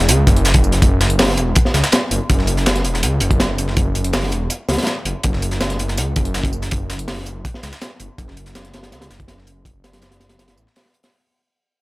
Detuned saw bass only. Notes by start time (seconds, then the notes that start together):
0.08 C#2
0.27 F#1
0.82 F#1
1.37 E1
1.74 C#2
2.11 F#1
2.30 F#1
2.85 E1
3.03 C#2
3.21 F#1
3.77 F#1
4.32 E1
4.69 C#2
5.05 F#1
5.24 F#1
5.79 F#1
5.97 C#2
6.16 F#1
6.72 F#1
7.26 F#1
7.63 C#2
8.00 F#1
8.18 F#1
8.74 F#1
8.92 C#2
9.10 F#1
9.65 F#1
10.21 F#1
10.39 F#1
10.57 A1